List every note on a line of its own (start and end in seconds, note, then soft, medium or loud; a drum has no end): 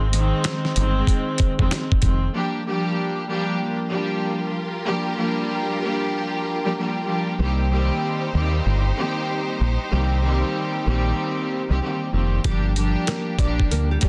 0.00 0.32 G#1 loud
0.00 0.10 D#3 medium
0.00 0.11 G#3 loud
0.00 0.12 C4 loud
0.00 2.30 G#4 medium
0.00 2.31 C5 medium
0.00 2.31 D#5 medium
0.00 2.30 C6 medium
0.11 0.71 D#3 loud
0.11 0.72 G#3 medium
0.11 0.73 C4 loud
0.11 closed hi-hat medium
0.44 finger snap medium
0.44 snare loud
0.44 closed hi-hat medium
0.65 snare soft
0.76 1.02 G1 loud
0.76 1.51 D#3 loud
0.76 1.52 G#3 loud
0.76 1.52 C4 loud
0.76 closed hi-hat medium
1.07 kick loud
1.07 closed hi-hat medium
1.38 kick medium
1.38 closed hi-hat medium
1.59 1.69 F1 medium
1.59 1.69 D#3 medium
1.59 1.70 G#3 medium
1.59 1.71 C4 loud
1.59 kick medium
1.70 1.99 D#3 medium
1.70 2.00 G#3 medium
1.70 2.01 C4 medium
1.70 finger snap medium
1.70 snare loud
1.70 closed hi-hat medium
1.92 kick loud
2.01 2.28 F1 medium
2.01 2.31 D#3 medium
2.01 2.32 G#3 medium
2.01 2.32 C4 medium
2.01 kick medium
2.01 closed hi-hat medium
2.33 2.63 F3 medium
2.33 2.63 G3 medium
2.33 2.63 A#3 medium
2.33 2.64 D4 medium
2.33 2.64 G4 loud
2.65 3.25 F3 medium
2.65 3.25 G3 medium
2.65 3.25 A#3 medium
2.65 3.26 D4 medium
2.65 3.26 G4 loud
3.28 3.75 F3 medium
3.28 3.75 G3 medium
3.28 3.76 A#3 medium
3.28 3.76 D4 medium
3.28 3.76 G4 loud
3.59 7.35 F4 medium
3.59 7.35 G4 medium
3.59 7.35 A#4 medium
3.90 4.50 F3 medium
3.90 4.50 G3 medium
3.90 4.51 A#3 medium
3.90 4.51 D4 medium
3.90 4.51 G4 loud
4.85 5.15 F3 medium
4.85 5.15 G3 medium
4.85 5.16 A#3 medium
4.85 5.16 D4 medium
4.85 5.16 G4 loud
5.16 5.77 F3 loud
5.16 5.77 G3 medium
5.16 5.77 A#3 medium
5.16 5.77 D4 medium
5.16 5.77 G4 loud
5.82 6.57 F3 loud
5.82 6.57 G3 medium
5.82 6.57 A#3 medium
5.82 6.57 D4 medium
5.82 6.58 G4 loud
6.64 6.75 F3 medium
6.64 6.76 G3 medium
6.64 6.76 A#3 medium
6.64 6.77 D4 medium
6.64 6.77 G4 medium
6.76 7.03 F3 medium
6.76 7.03 G3 medium
6.76 7.04 A#3 medium
6.76 7.04 D4 medium
6.76 7.05 G4 medium
7.04 7.35 F3 medium
7.04 7.36 G3 medium
7.04 7.36 A#3 medium
7.04 7.36 D4 medium
7.04 7.37 G4 medium
7.38 7.90 C2 loud
7.38 7.68 D#3 medium
7.38 7.69 G3 medium
7.38 7.69 A#3 medium
7.38 7.69 C4 medium
7.38 12.41 D#4 medium
7.38 12.41 G4 medium
7.38 7.69 G4 loud
7.38 12.41 C5 medium
7.70 8.30 D#3 medium
7.70 8.30 G3 medium
7.70 8.30 A#3 medium
7.70 8.30 C4 medium
7.70 8.31 G4 loud
8.33 8.59 D#2 medium
8.33 8.80 D#3 medium
8.33 8.80 G3 medium
8.33 8.80 A#3 medium
8.33 8.81 C4 medium
8.33 8.81 G4 loud
8.66 8.91 G1 loud
8.97 9.56 D#3 medium
8.97 9.56 G3 medium
8.97 9.57 A#3 medium
8.97 9.57 C4 medium
8.97 9.57 G4 loud
9.61 9.76 A#1 medium
9.90 10.42 C2 loud
9.90 10.21 D#3 medium
9.90 10.21 G3 medium
9.90 10.21 A#3 medium
9.90 10.22 C4 medium
9.90 10.22 G4 loud
10.22 10.82 D#3 medium
10.22 10.82 G3 medium
10.22 10.82 A#3 medium
10.22 10.83 C4 medium
10.22 10.83 G4 loud
10.84 11.12 A#1 medium
10.84 11.60 D#3 loud
10.84 11.61 G3 medium
10.84 11.61 A#3 medium
10.84 11.61 C4 medium
10.84 11.62 G4 loud
11.69 11.79 C2 medium
11.69 11.80 D#3 medium
11.69 11.80 G3 medium
11.69 11.81 A#3 medium
11.69 11.81 C4 medium
11.69 11.82 G4 loud
11.81 12.10 D#3 medium
11.81 12.10 G3 medium
11.81 12.11 A#3 medium
11.81 12.12 C4 medium
11.81 12.12 G4 medium
12.11 12.38 F1 medium
12.11 12.42 D#3 medium
12.11 12.42 G3 medium
12.11 12.42 A#3 medium
12.11 12.42 C4 medium
12.11 12.43 G4 medium
12.43 12.95 G1 loud
12.43 12.74 F3 medium
12.43 12.74 G3 medium
12.43 13.04 G3 medium
12.43 12.74 A#3 medium
12.43 12.74 D4 medium
12.43 13.04 G4 medium
12.43 12.75 G4 loud
12.43 kick loud
12.43 closed hi-hat medium
12.76 13.35 F3 medium
12.76 13.36 G3 medium
12.76 13.36 A#3 medium
12.76 13.36 D4 medium
12.76 13.36 G4 loud
12.76 closed hi-hat medium
13.07 13.36 A#3 medium
13.07 13.36 A#4 medium
13.07 snare loud
13.07 snare medium
13.07 closed hi-hat medium
13.38 13.64 A#1 loud
13.38 13.85 F3 medium
13.38 13.86 G3 medium
13.38 13.86 A#3 medium
13.38 13.86 D4 loud
13.38 13.68 D4 medium
13.38 13.86 G4 loud
13.38 13.68 D5 medium
13.38 kick medium
13.38 closed hi-hat medium
13.60 kick medium
13.71 13.96 D2 medium
13.71 13.89 A#3 medium
13.71 13.89 A#4 medium
13.71 closed hi-hat medium
13.91 14.00 G3 medium
13.91 14.00 G4 medium
14.01 14.09 F3 medium
14.01 14.09 G3 medium
14.01 14.09 A#3 medium
14.01 14.09 D4 medium
14.01 14.09 G4 medium
14.01 14.09 G4 loud
14.01 kick medium
14.01 closed hi-hat medium